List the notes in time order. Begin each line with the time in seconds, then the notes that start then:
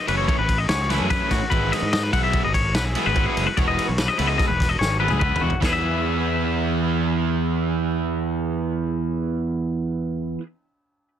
0.08 F#1 E3 A3 C#4 E4 B4, ride
0.18 C#5
0.28 C#5, kick, ride
0.39 A1 B4
0.48 kick, ride
0.58 D#5
0.69 C#2 C#5, snare, ride
0.90 E3 A3 C#4 E4 B4, snare, ride
1.00 F#2 G#4
1.10 E3 A3 C#4 E4 B4, kick, snare, ride
1.31 A2 F#4, kick, snare, ride
1.50 G#1 E3 G#3 B3 E4 B4, kick, ride
1.72 D#5, snare, ride
1.82 G#2
1.93 D#5, snare, ride
2.03 B4
2.13 B1 E3 G#3 B3 E4 F#5, kick, ride
2.24 E5
2.33 kick, ride
2.45 G#1 D#5
2.54 C#5, kick, ride
2.74 B1 B4, snare, ride
2.85 G#4
2.95 E3 G#3 B3 E4, ride
3.06 G#1 B4
3.15 E3 G#3 B3 E4, kick, ride
3.26 G#4
3.37 F#1, ride
3.47 B4
3.57 E1 E3 G#3 B3 E4 C#5, kick, ride
3.68 D#5
3.79 ride
3.88 B1 C#5
3.98 B4, snare, ride
4.08 D#5
4.18 C#2 E3 G#3 B3 E4 B4, ride
4.27 D#5
4.38 D#5, kick, snare, ride
4.48 E1 B4
4.60 kick, snare, ride
4.69 D#5
4.79 G#1 C#5, snare
5.00 E3 G#3 B3 E4 B4
5.08 C#2 G#4, high tom
5.20 E3 G#3 B3 E4 B4, kick, mid tom
5.36 mid tom
5.41 E2 F#4
5.50 floor tom
5.61 E2 E3 B3 E4, kick, snare, china
5.65 G#4
5.69 B4 E5